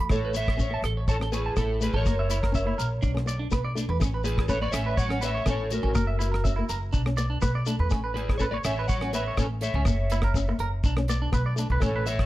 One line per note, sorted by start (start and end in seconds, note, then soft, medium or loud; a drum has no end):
0.01 0.07 B5 medium
0.09 0.75 A1 medium
0.09 0.26 A3 medium
0.09 0.33 A4 medium
0.09 0.20 A4 medium
0.09 0.36 C#5 medium
0.09 kick medium
0.09 cross-stick medium
0.09 shekere medium
0.25 0.31 B4 medium
0.34 0.50 B3 medium
0.34 0.81 C#5 medium
0.34 0.81 E5 loud
0.34 closed hi-hat medium
0.34 shekere medium
0.48 kick medium
0.48 cross-stick medium
0.57 0.66 C#4 medium
0.57 0.68 C#5 medium
0.57 kick medium
0.57 shekere medium
0.71 0.87 B3 medium
0.71 0.80 A5 medium
0.82 1.48 A1 medium
0.82 0.93 A4 medium
0.82 cross-stick medium
0.82 closed hi-hat medium
0.97 1.04 C#5 medium
1.08 1.16 A4 medium
1.08 1.15 C#5 loud
1.08 1.17 A5 medium
1.08 kick medium
1.08 shekere medium
1.20 1.28 C#4 medium
1.20 1.29 A4 medium
1.20 cross-stick medium
1.32 1.49 B3 medium
1.32 1.55 G#4 medium
1.32 1.56 B4 medium
1.32 1.41 C#5 medium
1.32 closed hi-hat soft
1.32 shekere medium
1.46 1.53 A5 medium
1.56 1.90 A1 medium
1.56 1.73 B3 medium
1.56 1.80 E4 medium
1.56 1.82 A4 medium
1.56 1.66 A4 medium
1.56 kick medium
1.56 cross-stick medium
1.56 shekere medium
1.81 1.97 A3 medium
1.81 1.94 G#4 medium
1.81 1.95 B4 medium
1.81 closed hi-hat soft
1.81 shekere medium
1.93 2.04 A1 loud
1.93 2.01 A4 medium
1.93 3.00 A#4 medium
1.93 3.37 C#5 medium
2.06 2.71 F#1 medium
2.06 2.22 A#3 medium
2.06 2.14 A#4 medium
2.06 kick medium
2.06 cross-stick medium
2.06 shekere medium
2.19 2.26 E5 medium
2.29 2.46 B3 medium
2.29 2.38 E4 medium
2.29 closed hi-hat soft
2.29 shekere medium
2.43 2.50 A#4 medium
2.43 kick medium
2.43 cross-stick medium
2.52 2.61 C#4 medium
2.52 2.63 E5 medium
2.52 kick medium
2.52 shekere medium
2.65 2.83 A#3 medium
2.65 2.74 E4 medium
2.78 3.00 A#1 medium
2.78 2.86 A#4 medium
2.78 closed hi-hat soft
2.78 shekere medium
3.02 3.47 B1 medium
3.02 3.11 D4 medium
3.02 kick medium
3.02 shekere medium
3.15 3.23 C#4 medium
3.15 cross-stick medium
3.26 3.43 B3 medium
3.26 3.35 D5 medium
3.26 closed hi-hat medium
3.26 shekere medium
3.39 3.47 D4 medium
3.51 3.85 B1 medium
3.51 3.68 B3 medium
3.51 3.60 B4 medium
3.51 kick medium
3.51 cross-stick medium
3.51 shekere medium
3.65 3.72 D5 medium
3.75 3.92 A3 medium
3.75 3.85 D4 medium
3.75 closed hi-hat soft
3.75 shekere medium
3.89 3.99 E2 loud
3.89 3.97 B4 medium
4.00 4.66 A1 medium
4.00 4.09 C#4 medium
4.00 muted nylon-string guitar stroke medium
4.00 kick medium
4.00 cross-stick medium
4.00 shekere loud
4.14 4.21 B4 medium
4.24 4.41 B3 medium
4.24 4.47 G#4 medium
4.24 4.48 B4 medium
4.24 closed hi-hat soft
4.24 shekere medium
4.38 kick medium
4.38 cross-stick medium
4.48 4.58 C#4 medium
4.48 4.61 A4 medium
4.48 4.58 B4 medium
4.48 4.61 C#5 medium
4.48 kick medium
4.48 shekere medium
4.61 4.78 B3 medium
4.61 4.70 B4 medium
4.61 4.70 C#5 medium
4.61 4.72 D5 medium
4.71 5.39 A1 medium
4.71 4.82 C#4 medium
4.71 4.95 C#5 medium
4.71 4.95 E5 loud
4.71 cross-stick medium
4.71 closed hi-hat medium
4.71 shekere medium
4.86 4.94 B4 medium
4.97 5.20 C#5 medium
4.97 5.06 C#5 medium
4.97 5.23 F#5 loud
4.97 kick medium
4.97 shekere loud
5.09 5.17 C#4 medium
5.09 5.19 C#4 medium
5.09 cross-stick medium
5.21 5.39 B3 medium
5.21 5.30 B4 medium
5.21 5.45 C#5 medium
5.21 5.49 E5 loud
5.21 closed hi-hat medium
5.21 shekere medium
5.35 5.42 C#5 medium
5.46 5.80 A1 medium
5.46 5.63 B3 medium
5.46 5.54 C#4 medium
5.46 5.70 A4 medium
5.46 kick medium
5.46 cross-stick medium
5.46 shekere medium
5.50 5.74 C#5 medium
5.70 5.88 A3 medium
5.70 6.66 F#4 medium
5.70 6.66 A#4 medium
5.70 closed hi-hat soft
5.70 shekere medium
5.83 5.94 A1 medium
5.83 5.91 C#4 medium
5.95 6.61 F#1 medium
5.95 6.12 A#3 medium
5.95 6.03 A#4 medium
5.95 kick medium
5.95 cross-stick medium
5.95 shekere loud
6.07 6.15 E5 medium
6.19 6.37 B3 medium
6.19 6.27 E4 medium
6.19 closed hi-hat soft
6.19 shekere medium
6.32 6.39 A#4 medium
6.32 cross-stick medium
6.44 6.53 C#4 medium
6.44 6.52 E5 medium
6.44 kick medium
6.44 shekere medium
6.56 6.75 A#3 medium
6.56 6.64 E4 medium
6.69 6.91 F#1 medium
6.69 6.77 A#4 medium
6.69 closed hi-hat medium
6.69 shekere medium
6.93 7.37 B1 medium
6.93 7.01 D4 medium
6.93 kick medium
6.93 shekere medium
7.06 7.14 C#4 medium
7.06 cross-stick medium
7.17 7.35 B3 medium
7.17 7.25 D5 medium
7.17 closed hi-hat soft
7.17 shekere medium
7.30 7.38 D4 medium
7.42 7.76 B1 medium
7.42 7.59 B3 medium
7.42 7.50 B4 medium
7.42 kick medium
7.42 cross-stick medium
7.42 shekere medium
7.55 7.63 D5 medium
7.66 7.83 A3 medium
7.66 7.75 D4 medium
7.66 closed hi-hat soft
7.66 shekere medium
7.79 7.90 E2 medium
7.79 7.87 B4 medium
7.90 8.57 A1 medium
7.90 8.08 A3 medium
7.90 7.99 C#4 medium
7.90 kick medium
7.90 cross-stick medium
7.90 shekere medium
8.04 8.11 B4 medium
8.14 8.32 B3 medium
8.14 8.38 G#4 medium
8.14 8.37 B4 medium
8.14 closed hi-hat soft
8.29 kick medium
8.29 cross-stick medium
8.38 8.49 C#4 medium
8.38 8.44 A4 medium
8.38 8.49 B4 medium
8.38 8.43 C#5 medium
8.38 kick medium
8.38 shekere medium
8.51 8.69 B3 medium
8.51 8.56 B4 medium
8.51 8.61 C#5 medium
8.51 8.56 D5 medium
8.64 9.30 A1 medium
8.64 8.73 C#4 medium
8.64 8.88 C#5 medium
8.64 8.87 E5 medium
8.64 cross-stick medium
8.64 closed hi-hat medium
8.64 shekere medium
8.79 8.86 B4 medium
8.88 9.12 C#5 medium
8.88 8.97 C#5 medium
8.88 9.14 F#5 loud
8.88 kick medium
8.88 shekere medium
9.01 9.09 C#4 medium
9.01 9.10 C#4 medium
9.01 cross-stick medium
9.13 9.30 B3 medium
9.13 9.23 B4 medium
9.13 9.36 C#5 medium
9.13 9.36 E5 medium
9.13 closed hi-hat medium
9.13 shekere medium
9.28 9.35 C#5 medium
9.37 9.71 A1 medium
9.37 9.55 B3 medium
9.37 9.47 C#4 medium
9.37 9.45 A4 medium
9.37 9.45 C#5 medium
9.37 kick medium
9.37 cross-stick medium
9.37 shekere medium
9.61 9.78 A3 medium
9.61 10.56 C#5 medium
9.61 10.56 E5 medium
9.61 closed hi-hat soft
9.61 shekere medium
9.74 9.85 C#2 loud
9.74 9.83 C#4 medium
9.85 10.52 F#1 medium
9.85 10.03 A#3 medium
9.85 muted clean electric guitar stroke medium
9.85 kick medium
9.85 cross-stick medium
9.85 shekere medium
10.10 10.28 B3 medium
10.10 10.20 E4 medium
10.10 closed hi-hat medium
10.10 shekere medium
10.22 10.31 A#4 medium
10.22 kick medium
10.22 cross-stick medium
10.34 10.44 C#4 medium
10.34 muted clean electric guitar stroke medium
10.34 kick medium
10.34 shekere medium
10.48 10.65 A#3 medium
10.48 muted clean electric guitar stroke medium
10.59 10.81 F#1 medium
10.59 10.68 A#4 medium
10.59 closed hi-hat medium
10.84 11.28 B1 medium
10.84 10.93 D4 medium
10.84 kick medium
10.84 shekere medium
10.97 11.06 C#4 medium
10.97 cross-stick medium
11.08 11.26 B3 medium
11.08 11.17 D5 medium
11.08 closed hi-hat medium
11.08 shekere medium
11.22 11.29 D4 medium
11.32 11.66 B1 medium
11.32 11.49 B3 medium
11.32 11.42 B4 medium
11.32 kick medium
11.32 cross-stick medium
11.32 shekere medium
11.46 11.53 D5 medium
11.56 11.73 A3 medium
11.56 11.67 D4 medium
11.56 closed hi-hat soft
11.56 shekere medium
11.70 11.81 B1 loud
11.70 11.79 B4 medium
11.80 12.26 A1 medium
11.80 11.98 A3 medium
11.80 11.91 C#4 medium
11.80 12.05 A4 medium
11.80 12.07 C#5 medium
11.80 kick medium
11.80 cross-stick medium
11.80 shekere medium
11.96 12.03 B4 medium
12.06 12.23 B3 medium
12.06 12.26 C#5 medium
12.06 12.26 E5 loud
12.06 closed hi-hat soft
12.06 shekere medium
12.19 kick medium
12.19 cross-stick medium